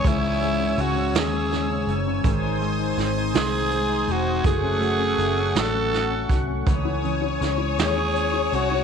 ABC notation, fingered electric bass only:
X:1
M:6/8
L:1/8
Q:3/8=54
K:C#m
V:1 name="Fingered electric bass" clef=bass
C,,2 C,, D,,2 F,,, | G,,,2 G,,, ^B,,,2 E,,, | F,,,2 F,,, A,,,2 ^B,,, | C,,2 C,, D,,2 ^B,,, |]